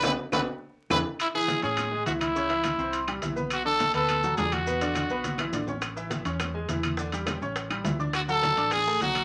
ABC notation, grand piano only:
X:1
M:4/4
L:1/8
Q:1/4=207
K:A
V:1 name="Grand piano"
[B,DF] z [B,DF] z3 [DEG] z | z [E,Ee]2 [Ccc']2 [G,Gg] [E,Ee]2 | [C,Cc] [E,Ee]2 [^B,^B^b]2 [=G,=G=g] [E,Ee] [=B,=B=b]- | [B,Bb] [D,Dd]2 [B,Bb]2 [F,Ff] [D,Dd]2 |
[B,,B,B] [D,Dd]2 [B,Bb]2 [E,Ee] [D,Dd] [Ccc']- | [Ccc'] [E,Ee]2 [Ccc']2 [G,Gg] [E,Ee]2 | [D,Dd] [=G,=G=g]2 [Ccc']2 [G,Gg] [E,Ee] [Ddd']- | [Ddd'] [F,Ff]2 [Ddd']2 [A,Aa] [F,Ff]2 |]